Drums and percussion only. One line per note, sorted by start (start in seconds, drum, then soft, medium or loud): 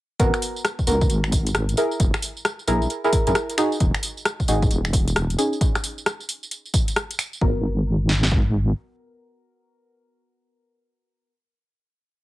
0.20 kick loud
0.20 closed hi-hat medium
0.20 tambourine soft
0.34 finger snap medium
0.34 closed hi-hat soft
0.34 tambourine soft
0.42 open hi-hat loud
0.42 tambourine medium
0.56 tambourine soft
0.65 cross-stick loud
0.65 closed hi-hat medium
0.65 tambourine soft
0.79 kick medium
0.79 tambourine soft
0.87 open hi-hat medium
0.87 tambourine medium
1.01 kick loud
1.01 tambourine soft
1.10 closed hi-hat medium
1.10 tambourine soft
1.24 finger snap medium
1.24 tambourine soft
1.32 kick loud
1.32 open hi-hat loud
1.32 tambourine medium
1.47 closed hi-hat medium
1.47 tambourine soft
1.55 cross-stick loud
1.55 closed hi-hat medium
1.55 tambourine soft
1.69 closed hi-hat medium
1.69 tambourine soft
1.77 open hi-hat medium
1.77 tambourine medium
1.91 tambourine soft
2.00 kick loud
2.00 closed hi-hat medium
2.00 tambourine soft
2.14 finger snap medium
2.14 cross-stick medium
2.14 closed hi-hat soft
2.14 tambourine soft
2.22 open hi-hat loud
2.22 tambourine medium
2.37 tambourine soft
2.45 cross-stick loud
2.45 closed hi-hat medium
2.45 tambourine soft
2.59 tambourine soft
2.68 open hi-hat medium
2.68 tambourine medium
2.82 tambourine soft
2.90 closed hi-hat medium
2.90 tambourine soft
3.04 tambourine soft
3.13 kick loud
3.13 open hi-hat loud
3.13 tambourine medium
3.27 closed hi-hat medium
3.27 tambourine soft
3.35 cross-stick loud
3.35 closed hi-hat medium
3.35 tambourine soft
3.50 closed hi-hat medium
3.50 tambourine soft
3.58 finger snap medium
3.58 open hi-hat medium
3.58 tambourine medium
3.72 tambourine soft
3.80 kick loud
3.80 closed hi-hat medium
3.80 tambourine soft
3.94 finger snap medium
3.94 closed hi-hat soft
3.94 tambourine soft
4.03 open hi-hat loud
4.03 tambourine medium
4.17 tambourine soft
4.25 cross-stick loud
4.25 closed hi-hat medium
4.25 tambourine soft
4.40 kick medium
4.40 tambourine soft
4.48 open hi-hat medium
4.48 tambourine medium
4.62 kick loud
4.62 tambourine soft
4.71 closed hi-hat medium
4.71 tambourine soft
4.85 finger snap medium
4.85 tambourine soft
4.93 kick loud
4.93 open hi-hat loud
4.93 tambourine medium
5.08 closed hi-hat medium
5.08 tambourine soft
5.16 cross-stick loud
5.16 closed hi-hat medium
5.16 tambourine soft
5.30 closed hi-hat medium
5.30 tambourine soft
5.39 open hi-hat medium
5.39 tambourine medium
5.53 tambourine soft
5.61 kick loud
5.61 closed hi-hat medium
5.61 tambourine soft
5.75 finger snap medium
5.75 cross-stick medium
5.75 closed hi-hat soft
5.75 tambourine soft
5.84 open hi-hat loud
5.84 tambourine medium
5.98 tambourine soft
6.06 cross-stick loud
6.06 closed hi-hat medium
6.06 tambourine soft
6.20 tambourine soft
6.29 open hi-hat medium
6.29 tambourine medium
6.43 tambourine soft
6.51 closed hi-hat medium
6.51 tambourine soft
6.65 tambourine soft
6.74 kick loud
6.74 open hi-hat loud
6.74 tambourine medium
6.88 closed hi-hat medium
6.88 tambourine soft
6.96 cross-stick loud
6.96 closed hi-hat medium
6.96 tambourine soft
7.11 closed hi-hat medium
7.11 tambourine soft
7.19 finger snap medium
7.19 open hi-hat medium
7.19 tambourine medium
7.33 tambourine soft
7.41 kick loud
8.09 snare medium
8.23 snare medium
8.32 kick medium